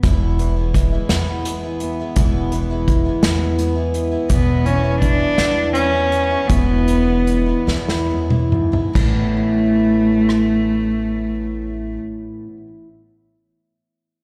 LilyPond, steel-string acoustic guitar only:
\new Staff \with { instrumentName = "Steel-string acoustic guitar" } { \clef bass \time 6/8 \key a \major \tempo 4. = 53 << { r4 gis8 b8 gis'8 b8~ | b4 gis8 b8 gis'8 b8~ | b4 gis8 b8 gis'8 b8~ | b4 gis2 |
<e b cis' e'>2.~ | <e b cis' e'>2. | } \\ { e,8 e2~ e8 | e,8 e2~ e8 | e,8 e2~ e8 | e,8 e4 e,8 fis,8 gis,8 |
a,2.~ | a,2. | } >> }